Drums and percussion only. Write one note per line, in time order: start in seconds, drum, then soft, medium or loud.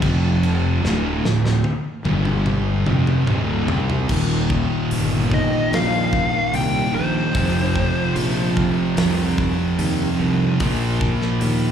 0.02 kick loud
0.02 crash medium
0.43 crash medium
0.85 snare medium
1.25 snare medium
1.46 snare medium
1.64 high tom medium
2.05 high tom medium
2.25 mid tom medium
2.46 mid tom medium
2.86 mid tom medium
3.07 mid tom medium
3.27 mid tom loud
3.68 floor tom loud
3.90 floor tom loud
4.09 kick loud
4.09 crash loud
4.50 kick medium
4.91 open hi-hat medium
5.31 kick medium
5.73 snare loud
5.73 open hi-hat medium
6.13 kick medium
6.54 open hi-hat medium
7.35 kick loud
7.35 open hi-hat medium
7.76 kick medium
8.16 open hi-hat medium
8.57 kick medium
8.97 snare loud
8.97 open hi-hat medium
9.38 kick medium
9.79 open hi-hat medium
10.60 kick loud
10.60 open hi-hat medium
11.01 kick loud
11.22 snare soft
11.41 open hi-hat medium